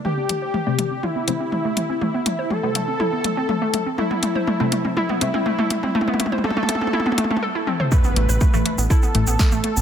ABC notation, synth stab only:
X:1
M:4/4
L:1/16
Q:1/4=122
K:C
V:1 name="Synth stab" clef=bass
z4 z [C,G,C]4- [C,G,C] [C,G,C] z4 z | z4 z [C,G,C]8- [C,G,C]3- | [C,G,C]4- [C,G,C] [C,G,C]4- [C,G,C] [C,G,C] z4 z | z16 |
z4 z [A,,E,A,]4- [A,,E,A,] [A,,E,A,] z4 z |]